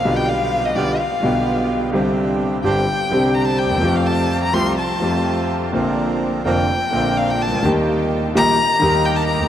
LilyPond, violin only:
\new Staff \with { instrumentName = "Violin" } { \time 4/4 \key bes \major \tempo 4 = 127 f''16 g''16 f''8. ees''16 d''8 f''4. r8 | r4. g''4. bes''16 a''16 g''8~ | g''16 f''16 a''8. bes''16 c'''8 a''4. r8 | r4. g''4. f''16 g''16 a''8 |
r4. bes''4. g''16 a''16 bes''8 | }